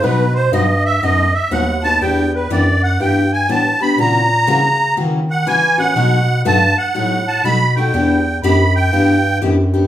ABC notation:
X:1
M:4/4
L:1/8
Q:"Swing" 1/4=121
K:Em
V:1 name="Accordion"
B c ^d e d e f a | g B d f g ^g a b | ^a4 z f ^g f- | f2 a f2 a b g- |
g2 b g3 z2 |]
V:2 name="Steel-string acoustic guitar"
[B,,F,B,^DF] z [B,,F,B,DF] z [B,,F,B,DF] z [B,,F,B,DF] [B,DF] | [E,B,DG] z [E,B,DG] z [E,B,DG] z [E,B,DG] [B,DG] | [^C,E,^A,^CF] z [C,E,A,CF] z [C,E,A,CF] z [C,E,A,CF] [A,CF] | [B,,F,A,^DF] z [B,,F,A,DF] z [B,,F,A,DF] z [B,,F,A,DF] [A,DF] |
[E,B,DG] z [E,B,DG] z [E,B,DG] z [E,B,DG] [B,DG] |]
V:3 name="Bass clarinet" clef=bass
B,,2 G,,2 F,,2 ^D,,2 | E,,2 F,,2 G,,2 A,, z | ^A,,2 ^C,2 ^D,2 E,2 | B,,2 G,, G,, A,,2 B,,2 |
E,,2 F,,2 G,,2 F,,2 |]